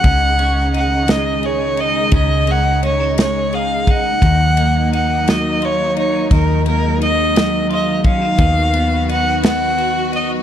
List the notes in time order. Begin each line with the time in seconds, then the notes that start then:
Already playing: C#3 F#3 A#3 C#4 F#4 F#5
0.04 C#2 C#3 D#3 G#3 D#4, kick, ride
0.39 C#4, ride
0.74 D#4 F#5, ride
1.08 G#3 D#5, snare, ride
1.43 G#4 C#5, ride
1.77 D#4 D#5, ride
2.11 C#2 C#3, kick, ride
2.16 D#5
2.47 C#4 F#5, ride
2.83 C#4 C#5, ride
3.00 D#4
3.18 G#3 C#5, snare, ride
3.53 G#4 F5, ride
3.87 D#4 F#5, kick, ride
4.22 D#2 D#3 F#3 A#3 D#4, kick, ride
4.57 A#3, ride
4.93 D#4 F#5, ride
5.27 F#3 D#5, snare, ride
5.62 F4 C#5, ride
5.96 D#4 C#5, ride
6.30 D#2 D#3 G#3 A#4, kick, ride
6.66 A#3 A#4, ride
7.01 D#4 D#5, ride
7.35 F#3, snare, ride
7.70 F4 D#5, ride
8.04 C#4 F5, kick, ride
8.22 D#4
8.36 D#2 D#3 B3 F#4, kick, ride
8.73 B3, ride
9.09 D#4 F#5, ride
9.43 B3 F#5, snare, ride
9.78 F#4, ride
10.12 D#4 D#5, ride